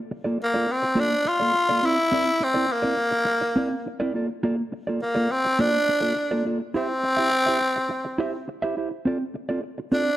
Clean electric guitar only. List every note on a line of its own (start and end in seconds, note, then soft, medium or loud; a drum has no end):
0.11 muted clean electric guitar stroke soft
0.24 0.39 A#3 medium
0.24 0.39 F4 medium
0.24 0.39 A4 medium
0.24 0.38 D5 medium
0.40 muted clean electric guitar stroke soft
0.54 0.67 A#3 medium
0.54 0.68 F4 medium
0.54 0.68 A4 medium
0.54 0.69 D5 medium
0.69 muted clean electric guitar stroke soft
0.83 muted clean electric guitar stroke soft
0.95 1.14 A#3 medium
0.95 1.11 F4 medium
0.95 1.10 A4 medium
0.95 1.10 D5 medium
1.11 muted clean electric guitar stroke soft
1.25 muted clean electric guitar stroke soft
1.40 1.53 A#3 soft
1.40 1.53 F4 soft
1.40 1.54 A4 medium
1.40 1.54 D5 medium
1.54 muted clean electric guitar stroke soft
1.69 1.82 A#3 medium
1.69 1.83 F4 medium
1.69 1.83 A4 medium
1.69 1.83 D5 medium
1.83 1.97 C4 medium
1.83 1.97 E4 medium
1.83 1.97 A#4 medium
1.83 1.96 D5 medium
1.97 muted clean electric guitar stroke soft
2.12 2.30 C4 medium
2.12 2.26 E4 medium
2.12 2.26 A#4 medium
2.12 2.25 D5 medium
2.26 muted clean electric guitar stroke soft
2.40 muted clean electric guitar stroke soft
2.54 2.67 C4 medium
2.54 2.67 E4 medium
2.54 2.68 A#4 medium
2.54 2.68 D5 medium
2.68 muted clean electric guitar stroke soft
2.82 2.95 C4 medium
2.82 2.96 E4 medium
2.82 2.97 A#4 medium
2.82 2.97 D5 medium
2.97 muted clean electric guitar stroke soft
3.11 muted clean electric guitar stroke soft
3.25 muted clean electric guitar stroke soft
3.41 muted clean electric guitar stroke medium
3.56 3.74 C4 medium
3.56 3.71 E4 medium
3.56 3.70 A#4 medium
3.56 3.69 D5 medium
3.71 muted clean electric guitar stroke soft
3.86 muted clean electric guitar stroke soft
4.00 4.14 C4 medium
4.00 4.15 E4 medium
4.00 4.15 A#4 medium
4.00 4.15 D5 medium
4.14 4.28 A#3 medium
4.14 4.29 F4 medium
4.14 4.28 A4 medium
4.14 4.28 D5 medium
4.29 muted clean electric guitar stroke soft
4.43 4.61 A#3 medium
4.43 4.58 F4 medium
4.43 4.58 A4 medium
4.43 4.57 D5 medium
4.58 muted clean electric guitar stroke soft
4.72 muted clean electric guitar stroke soft
4.87 5.01 A#3 medium
4.87 5.02 F4 medium
4.87 5.01 A4 medium
4.87 5.01 D5 medium
5.02 muted clean electric guitar stroke soft
5.15 5.29 A#3 medium
5.15 5.30 F4 medium
5.15 5.30 A4 medium
5.15 5.31 D5 medium
5.30 muted clean electric guitar stroke soft
5.45 muted clean electric guitar stroke soft
5.59 5.77 A#3 medium
5.59 5.73 F4 medium
5.59 5.73 A4 medium
5.59 5.71 D5 medium
5.72 muted clean electric guitar stroke soft
5.89 muted clean electric guitar stroke soft
6.01 6.14 A#3 soft
6.01 6.15 F4 medium
6.01 6.16 A4 medium
6.01 6.15 D5 medium
6.15 muted clean electric guitar stroke soft
6.31 6.44 A#3 medium
6.31 6.45 F4 medium
6.31 6.45 A4 medium
6.31 6.46 D5 medium
6.45 6.59 A#3 medium
6.45 6.60 F4 medium
6.45 6.59 A4 medium
6.45 6.59 D5 medium
6.60 muted clean electric guitar stroke soft
6.74 6.92 E4 medium
6.74 6.90 G4 medium
6.74 6.89 C5 loud
6.74 6.88 E5 medium
6.89 muted clean electric guitar stroke soft
7.03 muted clean electric guitar stroke soft
7.17 7.31 E4 medium
7.17 7.31 G4 medium
7.17 7.32 C5 medium
7.17 7.31 E5 medium
7.32 muted clean electric guitar stroke soft
7.46 7.59 E4 medium
7.46 7.60 G4 medium
7.46 7.60 C5 medium
7.46 7.60 E5 medium
7.60 muted clean electric guitar stroke soft
7.76 muted clean electric guitar stroke soft
7.89 muted clean electric guitar stroke soft
8.05 muted clean electric guitar stroke soft
8.18 8.36 E4 medium
8.18 8.35 G4 medium
8.18 8.34 C5 loud
8.18 8.32 E5 medium
8.34 muted clean electric guitar stroke medium
8.48 muted clean electric guitar stroke soft
8.62 8.76 E4 medium
8.62 8.76 G4 medium
8.62 8.77 C5 medium
8.62 8.77 E5 medium
8.77 8.90 E4 medium
8.77 8.90 G4 medium
8.77 8.90 C5 medium
8.77 8.89 E5 medium
8.91 muted clean electric guitar stroke soft
9.05 9.23 C4 medium
9.05 9.20 F4 medium
9.05 9.19 A4 medium
9.05 9.19 D5 medium
9.20 muted clean electric guitar stroke soft
9.34 muted clean electric guitar stroke soft
9.49 9.61 C4 soft
9.49 9.62 F4 medium
9.49 9.62 A4 medium
9.49 9.62 D5 medium
9.62 muted clean electric guitar stroke soft
9.78 muted clean electric guitar stroke soft
9.92 10.09 C4 medium
9.92 10.04 F4 medium
9.92 10.04 A4 medium
9.92 10.03 D5 medium
10.05 muted clean electric guitar stroke soft